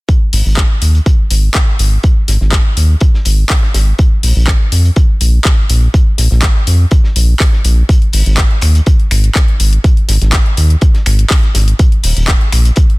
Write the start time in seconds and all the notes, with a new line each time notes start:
0.09 kick, closed hi-hat
0.33 G#1, open hi-hat
0.46 G#1
0.57 kick, snare, clap, closed hi-hat
0.82 D#2, closed hi-hat, open hi-hat
0.95 closed hi-hat
1.06 kick, closed hi-hat
1.31 G#1, closed hi-hat, open hi-hat
1.54 kick, snare, clap, closed hi-hat
1.79 G#1, closed hi-hat, open hi-hat
2.03 kick, closed hi-hat
2.28 G#1, snare, closed hi-hat, open hi-hat
2.41 G#1, snare
2.51 kick, snare, clap, closed hi-hat
2.77 D#2, closed hi-hat, open hi-hat
3.00 kick, closed hi-hat
3.14 snare
3.25 G#1, closed hi-hat, open hi-hat
3.50 kick, snare, clap, closed hi-hat, open hi-hat
3.63 snare
3.74 G#1, snare, closed hi-hat, open hi-hat
3.99 kick, closed hi-hat
4.23 A#1, open hi-hat
4.36 A#1
4.47 kick, snare, clap
4.72 F2, closed hi-hat, open hi-hat
4.85 closed hi-hat
4.96 kick, closed hi-hat
5.21 A#1, closed hi-hat, open hi-hat
5.45 kick, snare, clap, closed hi-hat
5.70 A#1, closed hi-hat, open hi-hat
5.94 kick, closed hi-hat
6.18 A#1, snare, closed hi-hat, open hi-hat
6.31 A#1, snare
6.41 kick, snare, clap, closed hi-hat
6.67 F2, closed hi-hat, open hi-hat
6.91 kick, closed hi-hat
7.04 snare
7.16 A#1, closed hi-hat, open hi-hat
7.40 kick, snare, clap, closed hi-hat, open hi-hat
7.53 snare
7.64 A#1, closed hi-hat, open hi-hat
7.89 kick, closed hi-hat
8.02 closed hi-hat
8.13 G#1, open hi-hat
8.26 G#1, closed hi-hat
8.38 kick, snare, clap, closed hi-hat
8.51 closed hi-hat
8.61 D#2, finger snap, closed hi-hat, open hi-hat
8.75 closed hi-hat
8.86 kick, closed hi-hat
9.00 closed hi-hat
9.11 G#1, finger snap, closed hi-hat, open hi-hat
9.24 closed hi-hat
9.35 kick, snare, clap, closed hi-hat
9.48 closed hi-hat
9.60 G#1, closed hi-hat, open hi-hat
9.73 closed hi-hat
9.84 kick, closed hi-hat
9.97 closed hi-hat
10.08 G#1, snare, closed hi-hat, open hi-hat
10.21 G#1, snare, closed hi-hat
10.33 kick, snare, clap, closed hi-hat
10.46 closed hi-hat
10.57 D#2, closed hi-hat, open hi-hat
10.70 closed hi-hat
10.81 kick, closed hi-hat
10.94 snare, closed hi-hat
11.06 G#1, finger snap, closed hi-hat, open hi-hat
11.19 closed hi-hat
11.30 kick, snare, clap, closed hi-hat, open hi-hat
11.43 snare, closed hi-hat
11.54 G#1, snare, closed hi-hat, open hi-hat
11.68 closed hi-hat
11.79 kick, closed hi-hat
11.92 closed hi-hat
12.03 D#1, open hi-hat
12.17 D#1, closed hi-hat
12.28 kick, snare, clap, closed hi-hat
12.41 closed hi-hat
12.52 A#1, finger snap, closed hi-hat, open hi-hat
12.65 closed hi-hat
12.76 kick, closed hi-hat
12.90 closed hi-hat